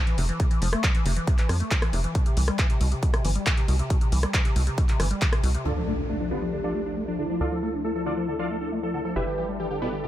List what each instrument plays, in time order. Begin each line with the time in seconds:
0.07 acid bass E3, closed hi-hat
0.18 analog synth bass F1, acid bass C3, open hi-hat
0.29 acid bass E3, closed hi-hat
0.40 acid bass C3, kick, closed hi-hat
0.51 acid bass E3, closed hi-hat
0.62 analog synth bass F1, acid bass F3, open hi-hat
0.73 acid bass A3, cross-stick, closed hi-hat
0.84 acid bass F3, kick, clap, closed hi-hat
0.95 acid bass E3, closed hi-hat
1.05 analog synth bass F1, acid bass C3, open hi-hat
1.16 acid bass E3, closed hi-hat
1.27 acid bass C3, kick, closed hi-hat
1.38 acid bass E3, clap, closed hi-hat
1.49 analog synth bass F2, acid bass F3, cross-stick, open hi-hat
1.60 acid bass A3, closed hi-hat
1.71 acid bass F3, kick, clap, closed hi-hat
1.82 acid bass E3, cross-stick, closed hi-hat
1.93 analog synth bass F1, acid bass C3, open hi-hat
2.04 acid bass E3, closed hi-hat
2.15 acid bass B2, kick, closed hi-hat
2.26 acid bass C3, closed hi-hat
2.37 analog synth bass C2, acid bass E3, open hi-hat
2.48 acid bass G3, cross-stick, closed hi-hat
2.59 acid bass E3, kick, clap, closed hi-hat
2.70 acid bass C3, closed hi-hat
2.81 analog synth bass C2, acid bass B2, open hi-hat
2.92 acid bass C3, closed hi-hat
3.03 acid bass B2, kick, closed hi-hat
3.14 acid bass C3, cross-stick, closed hi-hat
3.25 analog synth bass G1, acid bass E3, open hi-hat
3.35 acid bass G3, closed hi-hat
3.46 acid bass E3, kick, clap, closed hi-hat
3.57 acid bass C3, closed hi-hat
3.68 analog synth bass C2, acid bass B2, open hi-hat
3.79 acid bass C3, closed hi-hat
3.90 acid bass B2, kick, closed hi-hat
4.01 acid bass C3, closed hi-hat
4.12 analog synth bass C2, acid bass E3, open hi-hat
4.23 acid bass G3, cross-stick, closed hi-hat
4.34 acid bass E3, kick, clap, closed hi-hat
4.45 acid bass C3, closed hi-hat
4.56 analog synth bass C2, acid bass B2, open hi-hat
4.67 acid bass C3, closed hi-hat
4.78 acid bass B2, kick, closed hi-hat
4.89 acid bass C3, clap, closed hi-hat
5.00 analog synth bass G1, acid bass E3, cross-stick, open hi-hat
5.11 acid bass G3, closed hi-hat
5.22 acid bass E3, kick, clap, closed hi-hat
5.33 acid bass C3, cross-stick, closed hi-hat
5.43 analog synth bass C2, acid bass B2, open hi-hat
5.55 acid bass C3, closed hi-hat
5.65 analog synth bass D2, acid bass D3, analog synth pad F3 A3 D4, supersaw synth D4 F4 A4 D5, soft synth lead A4, crash, impact
5.76 acid bass F3, supersaw synth D4
5.87 acid bass A3, supersaw synth D4
5.98 acid bass D4
6.09 acid bass A3, supersaw synth D4
6.20 acid bass F3, supersaw synth D4
6.31 acid bass D3, supersaw synth B3 D4 F4 B4, soft synth lead G4
6.42 acid bass F3, supersaw synth D4
6.53 acid bass D3, supersaw synth D4
6.64 acid bass F3, supersaw synth D4 F4 A4 D5
6.75 acid bass A3, supersaw synth D4
6.86 acid bass D4, supersaw synth D4
6.97 acid bass A3
7.08 acid bass F3, supersaw synth D4
7.19 acid bass D3, supersaw synth D4, soft synth lead E4
7.30 acid bass F3, supersaw synth D4
7.41 analog synth bass D2, acid bass D3, supersaw synth F4 A4 D5 F5
7.52 acid bass F3, supersaw synth A4
7.63 acid bass A3, supersaw synth A4
7.74 acid bass D4
7.84 acid bass A3, soft synth lead E4, supersaw synth A4
7.95 acid bass F3, supersaw synth A4
8.06 acid bass D3, supersaw synth D4 F4 A4 D5
8.17 acid bass F3, supersaw synth A4
8.28 acid bass D3, supersaw synth A4
8.39 acid bass F3, supersaw synth F4 A4 D5 F5
8.50 acid bass A3, supersaw synth A4
8.61 acid bass D4, supersaw synth A4
8.72 acid bass A3
8.83 acid bass F3, supersaw synth A4
8.94 acid bass D3, supersaw synth A4
9.05 acid bass F3, supersaw synth A4
9.16 analog synth bass G1, acid bass B2, analog synth pad G3 E4 A4 B4, supersaw synth E4 G4 B4 E5, soft synth lead B4
9.27 acid bass D3, supersaw synth G4
9.38 acid bass E3, supersaw synth G4
9.49 acid bass G3
9.60 acid bass E3, supersaw synth G4
9.71 acid bass D3, supersaw synth G4
9.81 acid bass B2, supersaw synth B3 E4 G4 B4, soft synth lead A4
9.92 acid bass D3, supersaw synth G4
10.03 acid bass B2, supersaw synth G4